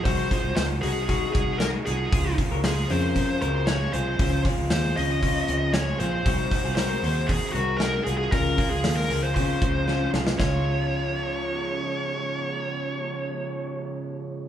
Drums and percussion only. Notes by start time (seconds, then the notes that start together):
0.05 kick, hi-hat pedal, open hi-hat
0.31 kick, snare, hi-hat pedal, open hi-hat
0.57 snare, hi-hat pedal, open hi-hat
0.83 hi-hat pedal, open hi-hat
1.09 kick, hi-hat pedal, open hi-hat
1.35 kick, hi-hat pedal, open hi-hat
1.60 snare, hi-hat pedal, open hi-hat
1.86 hi-hat pedal, open hi-hat
2.12 kick, hi-hat pedal, open hi-hat
2.38 kick, snare, hi-hat pedal, open hi-hat
2.64 snare, hi-hat pedal, open hi-hat
2.90 hi-hat pedal, open hi-hat
3.15 kick, hi-hat pedal, open hi-hat
3.42 hi-hat pedal, open hi-hat
3.67 snare, hi-hat pedal, open hi-hat
3.93 hi-hat pedal, open hi-hat
4.19 kick, hi-hat pedal, open hi-hat
4.45 kick, snare, hi-hat pedal, open hi-hat
4.70 snare, hi-hat pedal, open hi-hat
4.97 hi-hat pedal, open hi-hat
5.23 kick, hi-hat pedal, open hi-hat
5.48 hi-hat pedal, open hi-hat
5.74 snare, hi-hat pedal, open hi-hat
6.00 hi-hat pedal, open hi-hat
6.26 kick, hi-hat pedal, open hi-hat
6.51 kick, snare, hi-hat pedal, open hi-hat
6.77 snare, hi-hat pedal, open hi-hat
7.04 hi-hat pedal, open hi-hat
7.29 kick, hi-hat pedal, open hi-hat
7.55 hi-hat pedal, open hi-hat
7.80 snare, hi-hat pedal, open hi-hat
8.07 hi-hat pedal, open hi-hat
8.32 kick, hi-hat pedal, open hi-hat
8.58 kick, hi-hat pedal, open hi-hat
8.84 snare, hi-hat pedal, open hi-hat
9.10 hi-hat pedal, open hi-hat
9.36 kick, hi-hat pedal, open hi-hat
9.62 kick, hi-hat pedal, open hi-hat
9.88 snare
10.14 snare
10.27 snare
10.40 kick, snare